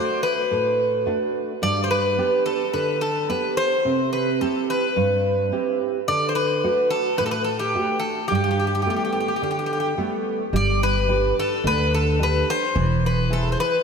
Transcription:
Already playing: A3 D4 F#4 C5
0.23 B4
0.51 A2
1.06 A3 D4 F#4
1.62 G2 D5
1.84 C5
1.91 B4
2.18 B3 D4 G4
2.46 A4
2.73 D3 B4
3.01 A4
3.29 B3 D4 G4 B4
3.57 C5
3.85 C3
4.13 B4
4.41 C4 E4 G4 A4
4.70 B4
4.96 G2
5.52 C4 E4 G4
6.08 D3 D5
6.29 C5
6.35 B4
6.64 A3 D4 F#4
6.90 A4
7.18 A2 B4
7.26 A4
7.31 B4
7.44 A4
7.59 G4
7.75 A3 D4 F#4
8.00 A4
8.28 G2 G4
8.35 G4
8.44 G4
8.51 G4
8.60 G4
8.67 G4
8.75 G4
8.82 G3 G4
8.86 A3 B3 G4
8.96 G4
9.05 G4
9.13 G4
9.20 G4
9.28 G4
9.36 G4
9.42 D3 G4
9.51 G4
9.59 G4
9.66 G4
9.73 G4
9.80 G4
9.98 G3 A3 B3
10.53 G1 G3 D5
10.83 B4
11.08 D4 G4 B4
11.39 A4
11.64 D2 D3 B4
11.94 A4
12.19 D4 G4 B4
12.50 C5
12.75 E1 E3
13.06 B4
13.30 E4 G#4 A4 B4
13.52 C5
13.60 B4

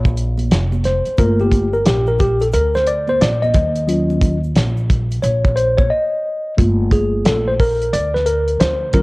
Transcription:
Already playing: A#1
0.05 kick, shaker
0.17 closed hi-hat, shaker
0.38 closed hi-hat, high conga, shaker
0.51 F1, snare, closed hi-hat, shaker
0.72 high conga, shaker
0.84 C5, snare, closed hi-hat, low conga, shaker
1.06 muted upright bass stroke, closed hi-hat, shaker
1.18 G1 A3 A#3 F4 A#4, kick, closed hi-hat, shaker
1.40 G4, high conga, shaker
1.52 kick, closed hi-hat, shaker
1.73 A#4, shaker
1.86 A#1 G4, snare, closed hi-hat, shaker
2.07 A#4, shaker
2.19 G4, kick, closed hi-hat, low conga, shaker
2.40 A4, closed hi-hat, shaker
2.52 D2 A#4, closed hi-hat, shaker
2.74 C5, snare, shaker
2.86 D5, closed hi-hat, shaker
3.07 C5, high conga, shaker
3.21 A#1 D5, snare, closed hi-hat, shaker
3.42 D#5, high conga, shaker
3.54 D#2, kick, closed hi-hat, low conga, shaker
3.76 closed hi-hat, shaker
3.87 F#3 C#4 F4, closed hi-hat, shaker
4.10 high conga, shaker
4.21 kick, closed hi-hat, shaker
4.44 shaker
4.56 A#1, snare, closed hi-hat, high conga, shaker
4.77 shaker
4.90 kick, closed hi-hat, low conga, shaker
5.11 closed hi-hat, shaker
5.22 A#1 C#5, closed hi-hat, shaker
5.45 kick, shaker
5.56 C5, closed hi-hat, shaker
5.77 C#5, kick, high conga, shaker
5.90 D#5
6.57 G1 A3 A#3 F4, kick, closed hi-hat
6.91 G#4, kick, closed hi-hat
7.25 A#1 A4, snare, closed hi-hat
7.48 C5
7.60 A#4, kick, open hi-hat
7.82 closed hi-hat
7.93 D2 D5, closed hi-hat
8.14 B4, snare
8.26 A#4, closed hi-hat
8.48 closed hi-hat
8.60 D2 C5, snare, closed hi-hat
8.93 D#2 F#3 C#4 F4 A#4, kick, closed hi-hat

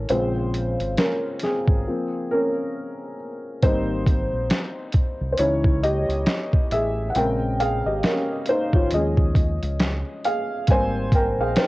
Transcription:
Already playing: E3 C#4 D#4 E4 A4 A#4 C#5
0.09 A#1 C#3 G#3 C4 F4 C5, closed hi-hat
0.54 closed hi-hat
0.79 G#1, closed hi-hat
0.98 C#4 A#4, snare, closed hi-hat
1.39 snare, closed hi-hat
1.44 C4 G#4
1.68 G#1, kick
1.88 F3 A#3 C4
2.31 C#4 A#4
3.62 G#1 G3 A#3 C4 D#4 C5, kick, closed hi-hat
4.06 kick, closed hi-hat
4.33 A#1
4.50 snare, closed hi-hat
4.92 kick, closed hi-hat
5.21 C2
5.33 C5
5.38 C#2 E3 C#4 D#4 E4 C#5, closed hi-hat
5.64 kick
5.84 G4 D#5, closed hi-hat
6.09 C#2, closed hi-hat
6.26 snare, closed hi-hat
6.53 kick
6.71 A1 G#4 E5, closed hi-hat
7.10 F#5
7.15 A#1 C#3 G#3 C4 A#4 G5, closed hi-hat
7.60 G#4 F5, closed hi-hat
7.86 G#1 G4 D#5
8.03 C#4 A#4, snare, closed hi-hat
8.46 C5, closed hi-hat
8.50 D#4
8.73 G#1 F4 C#5, kick
8.91 D#2 F3 G#3 C#4 G#4 D#5, closed hi-hat
9.17 kick
9.35 kick, closed hi-hat
9.62 C#2, closed hi-hat
9.80 snare, closed hi-hat
10.25 G#4 F5, closed hi-hat
10.67 G#1 G3 A#3 C4 G#5, kick, closed hi-hat
10.71 C5
11.12 A#4 G5, kick, closed hi-hat
11.38 A#1 G#4 F5
11.56 D#4 C5, snare, closed hi-hat

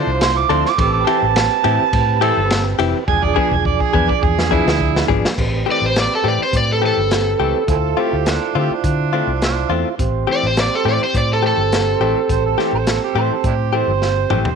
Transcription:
Already playing: F3 C4 D4 E4 F4 C5
0.07 C2
0.21 C6, snare, ride
0.38 D6
0.49 D2 F3 C4 D4 A4 C6, ride
0.66 D6, snare
0.78 A1 C4 G4 A4 B4 D6, kick, ride
0.93 D6
1.07 E3 C4 E4 G4 A5, ride
1.22 A1
1.36 snare, ride
1.64 A2 E3 C4 E4 G4, ride
1.80 muted fingered electric bass stroke
1.93 A2, kick, ride
2.21 E3 C4 E4 G4 A4, ride
2.37 G1
2.50 snare, ride
2.79 F1 E3 C4 E4 G4, ride
3.07 E1 F3 D4 F4 G#4 G#5, kick
3.23 D5, kick
3.36 F3 B3 D4 G#4, kick
3.51 E1 G#5, kick
3.65 D5, kick
3.80 G#4, kick
3.93 E2 F3 B3 D4 G#4 G#5, kick
4.09 D5, muted fingered electric bass stroke, kick
4.23 E2 G#4, kick
4.39 snare
4.51 F3 B3 D4 E4 G#4, kick
4.66 D2, snare
4.80 kick
4.96 snare
5.08 G#1 F3 B3 D4 G#4, kick
5.25 snare
5.37 A1 C4 G4 B4, kick, crash
5.66 E3 A3 C4 G4
5.71 D5
5.82 A1
5.86 C5
5.96 snare, closed hi-hat
6.00 D5
6.15 A4
6.24 A2 E3 A3 C4 G4
6.28 D5
6.39 muted fingered electric bass stroke
6.43 C5
6.53 A2, kick, closed hi-hat
6.57 D5
6.72 A4
6.82 E3 A3 C4 G4
6.86 A4
6.97 G1
7.11 snare, closed hi-hat
7.39 C#2 E3 A3 C4 G4
7.67 D2 C4 E4 F4 A4 C5, kick, closed hi-hat
7.97 A3 C4 F4 G4
8.13 D2
8.26 D4, snare, closed hi-hat
8.55 D3 A3 C4 F4 G4
8.70 D4, muted fingered electric bass stroke
8.84 D3, kick, closed hi-hat
9.13 A3 C4 F4
9.27 C2
9.42 D4, snare, closed hi-hat
9.69 E2 A3 C4 F4
9.98 A1 C4 G4 C5, kick, closed hi-hat
10.27 E3 A3 C4 G4
10.32 D5
10.43 A1 C5
10.57 D5, snare, closed hi-hat
10.75 A4
10.85 A2 E3 A3 C4 G4
10.89 D5
11.00 C5, muted fingered electric bass stroke
11.14 A2 D5, kick, closed hi-hat
11.33 A4
11.43 E3 A3 C4 G4 A4
11.57 G1
11.72 snare, closed hi-hat
12.00 A1 E3 A3 C4 G4
12.29 A1 C5, kick, closed hi-hat
12.46 A4
12.58 E3 A3 C4 G4, snare
12.73 A1 C5
12.87 A4, snare, closed hi-hat
13.04 G4
13.15 A2 E3 A3 C4 G4 C5
13.30 A4, muted fingered electric bass stroke
13.44 A2 D4 E4 G4, kick, closed hi-hat
13.73 E3 A3 C4 G4 C5
13.88 G1
14.02 snare
14.30 A1 E3 A3 C4 G4, mid tom
14.45 floor tom

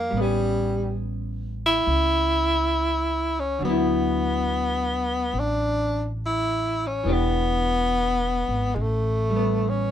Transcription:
Already playing: A#3 C4 D4
0.10 A1 G3
0.17 G3 B3
0.22 C#4
1.66 E4
1.87 C#2
3.40 C#4
3.59 D2 D3 F#3
3.65 B3
3.69 E4
5.33 A1
5.39 D4
6.26 E4
6.87 C#4
7.04 E1 E3 B3 D4
7.09 B3 G4
8.48 G#1
8.75 A1 G#3
8.81 A3
9.30 G3
9.36 B3
9.69 C#4

